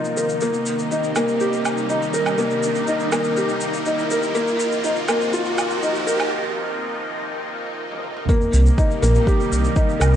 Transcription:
Already playing: C3 D#3 F3 A#3 D#4 F4 A#4, riser
0.05 shaker
0.17 A#4, shaker
0.29 shaker
0.41 C3 G3 A#3, shaker
0.54 shaker
0.66 shaker
0.79 shaker
0.91 D#4, shaker
1.04 shaker
1.16 A#3, low woodblock, shaker
1.28 shaker
1.40 G4, shaker
1.53 shaker
1.65 low woodblock, shaker
1.78 shaker
1.90 D#4, shaker
2.02 shaker
2.14 A#4, shaker
2.26 low woodblock, shaker
2.38 A#3, shaker
2.51 shaker
2.63 shaker
2.75 shaker
2.87 D#4, shaker
3.00 shaker
3.12 A#3, low woodblock, shaker
3.24 shaker
3.37 G4, shaker
3.49 shaker
3.61 shaker
3.74 shaker
3.86 D#4, shaker
3.99 shaker
4.11 A#4, shaker
4.23 shaker
4.34 C3 F3 A#3, shaker
4.48 shaker
4.60 shaker
4.72 shaker
4.84 D#4, shaker
4.96 shaker
5.08 A#3, low woodblock, shaker
5.21 shaker
5.33 F4, shaker
5.45 shaker
5.58 low woodblock, shaker
5.70 shaker
5.83 D#4, shaker
5.95 shaker
6.07 A#4, shaker
6.20 low woodblock, shaker
7.92 high tom
8.04 mid tom
8.17 mid tom
8.28 C3 D#3 G3 A#3 D#4, kick, shaker
8.41 shaker
8.54 C2, shaker
8.66 shaker
8.78 D#4, kick, shaker
8.91 shaker
9.02 A#1 A#3, shaker
9.15 shaker
9.27 G4, kick, shaker
9.40 shaker
9.52 C2, shaker
9.64 shaker
9.76 D#4, kick, shaker
9.89 shaker
10.00 C2 A#4, low woodblock, shaker

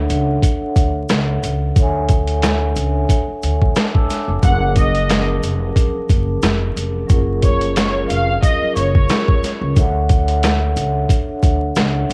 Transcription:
Already playing: D4 A4 C#5 E5 F#5
0.10 C#2, closed hi-hat, shaker
0.43 kick, closed hi-hat, shaker
0.61 muted upright bass stroke
0.76 D2, kick, closed hi-hat, shaker
1.09 C#2, snare, closed hi-hat, shaker
1.43 C#2, closed hi-hat, shaker
1.76 D2 D4 A4 C#5, kick, closed hi-hat, shaker
1.81 E5 G#5
2.09 kick, closed hi-hat, shaker
2.28 closed hi-hat
2.42 snare, closed hi-hat, shaker
2.76 C#2, closed hi-hat, shaker
3.09 kick, closed hi-hat, shaker
3.28 muted upright bass stroke
3.42 D2, closed hi-hat, shaker
3.62 kick
3.75 A5 D6, snare, closed hi-hat, shaker
3.95 A5 E6, kick
4.10 snare, closed hi-hat, shaker
4.27 F1 A5 D6
4.40 F#1 F3 F#3 C#4 F#5, kick, closed hi-hat, shaker
4.45 G#4 A#4
4.76 D#5, kick, closed hi-hat, shaker
4.95 closed hi-hat
5.09 snare, closed hi-hat, shaker
5.43 F1, closed hi-hat, shaker
5.76 kick, closed hi-hat, shaker
5.95 muted upright bass stroke
6.09 F#1, kick, closed hi-hat, shaker
6.42 F1, snare, closed hi-hat, shaker
6.76 F1, closed hi-hat, shaker
7.07 F#1 F#3 C#4 F4, kick, closed hi-hat, shaker
7.12 G#4 A#4
7.42 C#5, kick, closed hi-hat, shaker
7.61 closed hi-hat
7.76 C#5, snare, closed hi-hat, shaker
8.09 F1 F5, closed hi-hat, shaker
8.43 D#5, kick, closed hi-hat, shaker
8.61 muted upright bass stroke
8.76 F#1 C#5, closed hi-hat, shaker
8.95 kick
9.09 snare, closed hi-hat, shaker
9.28 kick
9.44 snare, closed hi-hat, shaker
9.61 C#2
9.74 D2 D4 A4 C#5, kick, closed hi-hat, shaker
9.78 E5 F#5
10.09 kick, closed hi-hat, shaker
10.28 closed hi-hat
10.43 snare, closed hi-hat, shaker
10.76 C#2, closed hi-hat, shaker
11.09 kick, closed hi-hat, shaker
11.28 muted upright bass stroke
11.43 D2, kick, closed hi-hat, shaker
11.76 C#2, snare, closed hi-hat, shaker
12.10 C#2, shaker

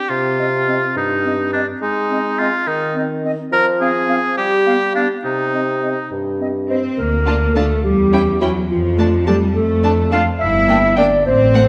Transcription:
Already playing: G4
0.10 C3 F4
0.38 C4 D#5
0.67 C4 D#5
0.96 G2 D#4
1.25 C4 D#5
1.53 C4 D4 D#5
1.82 G#3 D#4
2.10 C4 D#5
2.39 C4 F4 D#5
2.67 D#3 D#4
2.95 C4 D#5
3.23 C4 D#5
3.52 F3 A#4
3.81 C4 G#4 F5
4.08 C4 F5
4.37 G3 G4
4.66 B3 F5
4.95 B3 D4 F5
5.24 C3 D#4
5.53 C4 D#5
5.82 C4 D#5
6.12 G2
6.40 C4 D#5
6.69 C4 C5 D#5
6.97 D2 A#3 A#4
7.26 D4 F4 A5
7.54 A3 D4 F4 A4 A5
7.83 E2 G3 G4
8.13 C#4 E4 G5
8.41 F#3 C#4 E4 F#4 G5
8.69 F2 F3 F4
8.98 A3 D4 A5
9.27 G3 A3 D4 G4 A5
9.55 F2 A3 A4
9.83 A3 D4 A5
10.11 A3 D4 F4 F5 A5
10.39 G1 E4 E5
10.69 A#3 D4 G5
10.96 A#3 D4 D5 G5
11.26 A1 C4 C5
11.54 A3 C4 F#5

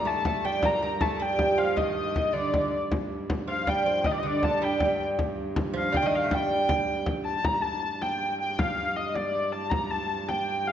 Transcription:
Already playing: G2
0.05 A3 A5, frame drum
0.25 A3, frame drum
0.43 G3 G5, frame drum
0.62 A#3 A#5, frame drum
0.83 A#3
1.01 A3 A5, frame drum
1.19 G3 G5, frame drum
1.39 frame drum
1.58 F3 F5, frame drum
1.76 D#3 D#5, frame drum
1.97 frame drum
2.16 frame drum
2.33 D3 D5
2.54 frame drum
2.92 G2, frame drum
3.30 frame drum
3.48 F3 F5, frame drum
3.67 G3 G5, frame drum
3.86 F3, frame drum
4.04 D#3 D#5, frame drum
4.12 D5
4.18 D#5
4.23 D3 D5
4.43 A5, frame drum
4.62 G3 G5, frame drum
4.80 frame drum
4.85 G3
5.00 frame drum
5.19 frame drum
5.56 frame drum
5.73 F3, frame drum
5.78 F5
5.92 G3 G5, frame drum
6.02 D#3 D#5
6.13 F5, frame drum
6.24 A3
6.31 G3 G5, frame drum
6.50 frame drum
6.69 frame drum
7.06 frame drum
7.25 A5, frame drum
7.44 G2 A#5, frame drum
7.62 A5
7.83 frame drum
8.01 G5, frame drum
8.39 G5
8.59 F5, frame drum
8.96 D#5, frame drum
9.15 D5, frame drum
9.52 A5
9.70 A#5, frame drum
9.91 A5
10.09 frame drum
10.28 G5, frame drum
10.67 F5

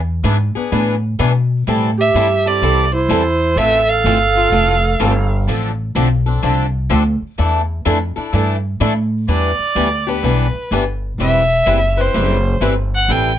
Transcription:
Already playing: E2
0.23 G#2 E3 B3 D4 G#4 B4
0.55 B3 D4 G#4, muted upright bass stroke
0.72 A2 E3 B3 D4 G#4 B4
1.19 B2 E3 B3 D4 G#4 B4
1.67 A2 E3 G3 C4 E4 A4
1.98 G4 E5
2.14 G2 E3 G3 C4 E4 A4
2.45 C4 E4 G4 A4 D5
2.61 C2 E3 G3 C4 E4 A4
2.92 E4 C5
3.09 E2 E3 G3 C4 E4 A4
3.55 A1 E3 A3 C4 F4 A4 E5
3.86 A4 F5
4.04 G1 E3 A3 C4 F4 A4
4.35 C4 F4 A4
4.52 F1 E3 A3 C4 F4 A4
5.00 G1 E3 A3 C4 F4 A4
5.47 A1 D3 F3 C4 D4 A4
5.95 B1 D3 F3 C4 D4 A4
6.26 C4 D4 A4
6.42 C2 D3 F3 C4 D4 A4
6.89 D2 D3 F3 C4 D4 A4
7.21 muted upright bass stroke
7.38 E2 E3 A3 D4 E4 A4
7.85 F2 E3 A3 D4 E4 A4
8.16 D4 E4 A4, muted upright bass stroke
8.33 G2 E3 A3 D4 E4 A4
8.80 A2 E3 A3 D4 E4 A4
9.28 E2 E3 G3 B3 D4 E4 G4 B4 D5
9.59 muted upright bass stroke
9.75 D2 E3 G3 B3 D4 E4 G4 B4
10.07 B3 D4 G4 B4
10.23 B1 E3 G3 B3 D4 E4 G4 B4
10.54 muted upright bass stroke
10.71 G1 E3 G3 B3 D4 E4 G4 B4
11.18 E1 E3 G3 C4 E4 B4 E5
11.66 F#1 E3 G3 C4 E4 B4
11.97 C4 E4 B4 C5
12.14 F#1 E3 G3 C4 E4 B4
12.61 G1 E3 G3 C4 E4 B4
12.95 F#5
13.08 A1 E3 G3 C4 E4 A4 G5

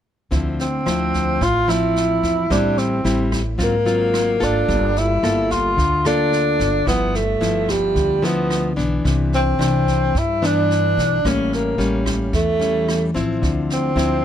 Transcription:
0.31 D2 D3 F3 C4 E4, kick, snare
0.59 C4, snare
0.86 D2 F3 C4 E4, cross-stick, snare
1.14 kick, snare
1.40 A1 A2 F4, kick, snare
1.68 F3 C4 E4, cross-stick, snare
1.96 snare
2.23 E2, kick, snare
2.50 A1 A2 G3 C4 D4 E4, kick, cross-stick, snare
2.78 C4, snare
3.05 A1 G3 C4 E4, snare
3.32 kick, cross-stick, snare
3.58 G#1 G#2 F#3 C4 F4, kick, snare
3.63 A#3
3.86 F#3 C4 F4, snare
4.14 cross-stick, snare
4.40 G#1 A#3 D4 F4 A4, kick, snare
4.68 G1 G3, kick, snare
4.96 E4, snare
5.23 G1 A#3 F4 A4, cross-stick, snare
5.51 F4, kick, snare
5.77 D2 D3, kick, snare
6.05 A#3 D4 F4 A4, cross-stick, snare
6.32 snare
6.59 G1, kick, snare
6.86 G1 G2 F3 B3 E4, kick, cross-stick, snare
7.15 A3, snare
7.41 G1 F3 B3 E4, snare
7.69 G3, kick, cross-stick, snare
7.95 D2 D3, kick, snare
8.22 F3 B3 E4, snare
8.50 cross-stick, snare
8.76 B1 E3 B3 D4, kick, snare
9.05 C2 C3, kick, snare
9.33 C4, snare
9.59 C2 E3 D4, cross-stick, snare
9.87 kick, snare
10.15 G2 E4, kick, snare
10.42 E3 B3 D4, cross-stick, snare
10.70 snare
10.97 B1, kick, snare
11.25 A1 A2 G3 A#3 C#4, kick, cross-stick, snare
11.53 A#3, snare
11.78 A1 G3 A#3 C#4, snare
12.06 kick, cross-stick, snare
12.33 E2 E3 A3, kick, snare
12.60 G3 C#4, snare
12.88 cross-stick, snare
13.14 A1 F3 C4 E4, kick, snare
13.42 D2 D3, kick, snare
13.70 C4, snare
13.95 D2 F3 C4 E4, cross-stick, snare

